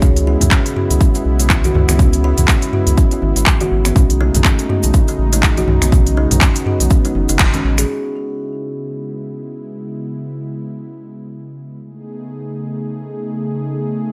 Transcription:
Already playing: C#3 G#3
0.02 C#2 B3 C#4 E4, kick, low conga, shaker
0.16 closed hi-hat, high conga, shaker
0.27 E4, muted conga
0.41 C#2, closed hi-hat, mid tom, high conga, low conga, shaker
0.51 C#4, finger snap, kick, clap, shaker
0.65 closed hi-hat, muted conga, shaker
0.76 F#4, mid tom
0.90 C#2, closed hi-hat, high conga, shaker
1.01 C#4, kick, shaker
1.15 E4, closed hi-hat, muted conga, shaker
1.25 B1
1.40 E4, closed hi-hat, shaker
1.50 finger snap, kick, clap, muted conga, shaker
1.64 F#4, closed hi-hat, high conga, shaker
1.75 C#2, mid tom, high conga
1.89 C#2 B3, finger snap, closed hi-hat, muted conga, high conga, shaker
1.99 C#4, kick, low conga, shaker
2.13 closed hi-hat, high conga, shaker
2.24 E4, muted conga
2.38 C#2, closed hi-hat, mid tom, high conga, low conga, shaker
2.48 C#4, finger snap, kick, clap, shaker
2.62 closed hi-hat, muted conga, shaker
2.73 F#4, mid tom
2.87 C#2, closed hi-hat, high conga, shaker
2.98 C#4, kick, shaker
3.11 E4, closed hi-hat, muted conga, shaker
3.22 G#1, high conga
3.36 G#1 E4, closed hi-hat, shaker
3.46 finger snap, kick, clap, muted conga, shaker
3.60 F#4, closed hi-hat, high conga, shaker
3.71 G#1
3.85 B3, finger snap, closed hi-hat, muted conga, high conga, shaker
3.96 B1 C#3 G#3 A3 C#4 D#4, kick, low conga, shaker
4.10 closed hi-hat, high conga, shaker
4.21 D#4, muted conga
4.34 B1, closed hi-hat, mid tom, high conga, low conga, shaker
4.45 C#4, finger snap, kick, clap, shaker
4.59 closed hi-hat, muted conga, shaker
4.69 F#4, mid tom
4.83 B1, closed hi-hat, high conga, shaker
4.94 C#4, kick, shaker
5.08 D#4, closed hi-hat, muted conga, shaker
5.19 A1
5.33 D#4, closed hi-hat, shaker
5.43 finger snap, kick, clap, muted conga, shaker
5.57 F#4, closed hi-hat, high conga, shaker
5.67 B1, mid tom, high conga
5.82 B1 B3, finger snap, closed hi-hat, muted conga, high conga, shaker
5.92 B3 C#4, kick, low conga, shaker
6.07 closed hi-hat, high conga, shaker
6.17 D#4, muted conga
6.31 B1, closed hi-hat, mid tom, high conga, low conga, shaker
6.41 C#4, finger snap, kick, clap, shaker
6.55 closed hi-hat, muted conga, shaker
6.66 F#4, mid tom
6.80 B1, closed hi-hat, high conga, shaker
6.90 C#4, kick, shaker
7.05 D#4, closed hi-hat, muted conga, shaker
7.15 F#1, high conga
7.29 F#1 D#4, closed hi-hat, shaker
7.39 F#1, finger snap, kick, clap, muted conga, shaker
7.53 C#4, closed hi-hat, high conga, shaker
7.64 A1
7.78 G#4, finger snap, closed hi-hat, muted conga, high conga, shaker
7.89 C#3 G#3 B3 E4
11.83 C#3 A3 B3 D#4 G#4

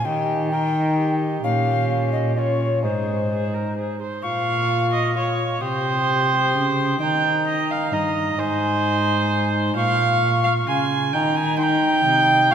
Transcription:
0.05 D#3 D#4 G4 G5
0.51 D#4 A#4 G5
0.99 G4
1.44 A#2 C#4 F5
2.12 D#5
2.36 C#4 F4 C#5 D#5
2.83 G#2 D#4 G#4 C5
3.30 G#4
3.54 A#4
3.77 G#4
4.02 C5
4.23 A#2 F4 F5 C#6
4.93 D#5
5.15 F4 C#5 C#6
5.61 C3 G4 C5 D#6
6.55 C#3
7.00 D#3 D#4 G5 A#5
7.47 D#5
7.71 F5
7.92 G2 D#4 D#5 A#5
8.38 G#2 D#4 C5 G#5
9.76 A#2 F4 F5 C#6
10.44 F5
10.68 C#3 G#5 C6
11.13 D#3 D#4 G5 A#5
11.35 G#5
11.58 D#4 G5 C6
11.63 A#5
12.05 C3
12.51 A#2 F4 F5 C#6

